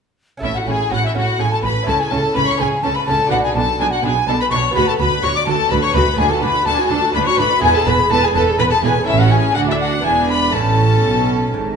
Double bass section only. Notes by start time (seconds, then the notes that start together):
0.42 A1
0.67 A1
0.91 A1
1.16 A1
1.40 A1
1.64 A1
1.88 C#2
2.12 C#2
2.36 C#2
2.61 C#2
2.85 C#2
3.08 C#2
3.32 B1
3.56 B1
3.79 B1
4.04 B1
4.27 B1
4.51 B1
4.75 D2
4.99 D2
5.23 D2
5.47 D2
5.71 D2
5.94 D2
6.18 D2
6.42 D2
6.66 D2
6.90 D2
7.14 D2
7.38 D2
7.62 E1
7.86 E1
8.10 E1
8.35 E1
8.59 E1
8.83 E1
9.07 A1
9.56 D2
10.05 E1
10.54 A1
11.05 B1
11.54 G#1